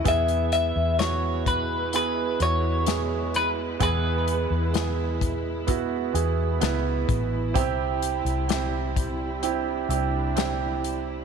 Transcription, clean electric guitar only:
0.08 0.51 E5 loud
0.53 0.99 E5 medium
0.99 1.43 C#5 medium
1.48 1.95 B4 medium
1.96 2.42 B4 medium
2.43 3.36 C#5 medium
3.36 3.49 B4 medium
3.83 4.71 B4 medium

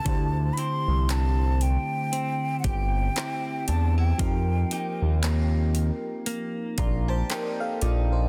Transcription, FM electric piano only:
0.05 4.15 D3 medium
0.05 4.15 A3 medium
0.05 4.16 E4 medium
0.05 4.17 G4 medium
0.09 4.17 C5 medium
4.18 8.29 F3 medium
4.18 8.29 C4 medium
4.18 6.75 D#4 medium
4.18 6.75 G4 medium
4.22 6.76 A#4 medium
6.79 7.07 D5 soft
6.79 7.07 A#5 medium
7.09 7.29 C5 medium
7.09 7.29 A5 medium
7.31 7.59 A#4 medium
7.31 7.59 G5 medium
7.60 7.81 A4 medium
7.60 7.81 F5 medium
7.82 8.11 F4 medium
7.82 8.10 D5 medium
8.12 8.29 D#4 medium
8.12 8.29 C5 medium

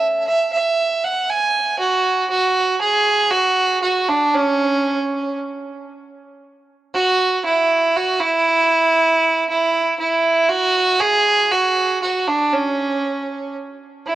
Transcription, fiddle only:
0.00 0.26 E5 medium
0.27 0.50 E5 medium
0.53 1.06 E5 medium
1.04 1.31 F#5 medium
1.30 1.78 G#5 loud
1.79 2.27 F#4 loud
2.30 2.78 F#4 loud
2.81 3.33 G#4 loud
3.31 3.82 F#4 loud
3.83 4.10 F#4 medium
4.09 4.36 D4 loud
4.35 5.38 C#4 loud
6.94 7.41 F#4 loud
7.45 7.98 E4 loud
7.96 8.22 F#4 medium
8.21 9.48 E4 loud
9.49 9.96 E4 loud
9.99 10.51 E4 loud
10.49 11.02 F#4 loud
11.00 11.53 G#4 loud
11.51 12.01 F#4 loud
12.02 12.29 F#4 medium
12.28 12.54 D4 loud
12.53 13.55 C#4 medium
14.06 14.15 E4 medium

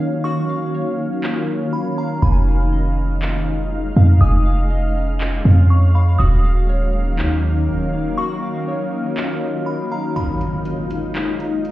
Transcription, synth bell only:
0.24 1.69 C#6 loud
1.73 1.97 B5 medium
1.98 2.22 A#5 medium
2.22 3.18 B5 medium
4.21 5.16 D#6 loud
5.70 5.94 C#6 medium
5.95 6.18 B5 medium
6.19 7.14 D#6 loud
8.18 9.62 C#6 loud
9.66 9.90 B5 medium
9.92 10.15 A#5 medium
10.16 11.11 B5 loud

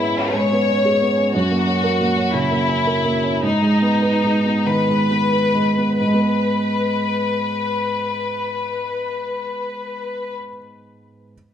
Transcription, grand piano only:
0.00 1.30 G#2 soft
0.00 0.52 B3 soft
0.00 0.17 C#4 soft
0.00 0.11 G#4 soft
0.17 0.45 C#4 soft
0.34 0.61 G#3 soft
0.52 0.79 B3 soft
0.69 0.95 C#4 soft
0.85 1.12 G#4 soft
1.02 1.28 B3 soft
1.17 1.34 C#4 soft
1.35 3.40 F#2 soft
1.51 1.77 A#3 soft
1.67 1.94 C#4 soft
1.84 2.11 A#4 soft
2.01 2.28 A#3 soft
2.17 2.45 C#4 soft
2.34 2.63 C#3 soft
2.51 2.80 A#3 soft
2.69 2.98 C#4 soft
2.87 3.16 A#4 soft
3.05 3.35 A#3 soft
3.23 3.43 C#4 soft
3.42 5.95 G#2 soft
3.62 3.94 G#3 soft
3.82 4.15 B3 soft
4.02 4.36 B4 soft
4.25 4.58 G#3 soft
4.46 4.80 B3 soft
4.66 5.01 D#3 soft
4.89 5.23 G#3 soft
5.11 5.46 B3 soft
5.33 5.69 B4 soft
5.55 5.90 G#3 soft
5.78 5.99 B3 soft
6.00 10.36 G#2 soft
6.07 10.43 G#3 soft
6.14 10.50 B3 soft
6.21 10.57 B4 soft

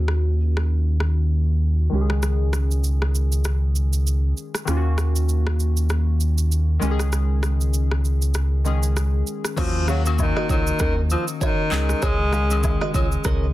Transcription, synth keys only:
0.00 1.87 D#3 medium
0.00 1.88 A#3 medium
0.00 1.89 C#4 medium
0.00 1.90 F#4 medium
1.90 4.32 D#3 medium
1.90 4.33 G#3 medium
1.90 4.34 C#4 medium
1.95 2.01 G4 medium
2.01 4.38 G#4 medium
4.65 6.77 D#3 medium
4.65 6.78 A#3 medium
4.65 6.78 C#4 medium
4.70 4.76 F4 medium
4.77 6.83 F#4 medium
6.79 8.61 D#3 medium
6.79 8.62 G#3 medium
6.79 8.62 C#4 medium
6.84 6.91 G4 medium
6.91 8.66 G#4 medium
8.64 9.55 D#3 medium
8.64 9.57 G#3 medium
8.64 9.57 C#4 medium
8.64 9.58 G#4 medium
9.56 9.78 D#3 medium
9.56 9.78 A#3 medium
9.56 9.79 C#4 medium
9.56 9.79 F#4 medium
9.87 9.98 D#3 medium
9.87 9.99 A#3 medium
9.87 9.99 C#4 medium
9.87 10.00 F#4 medium
10.05 10.78 D#3 medium
10.05 10.79 A#3 medium
10.05 10.79 C#4 medium
10.05 10.80 F#4 medium
11.71 12.22 D#3 medium
11.71 12.23 G#3 medium
11.71 12.23 C#4 medium
11.71 12.23 G#4 medium
12.32 12.43 D#3 medium
12.32 12.44 G#3 medium
12.32 12.44 C#4 medium
12.32 12.45 G#4 medium
12.50 12.56 C#3 medium
12.50 13.24 G#3 medium
12.50 13.24 C#4 medium
12.50 13.25 G#4 medium
12.56 13.27 D#3 medium

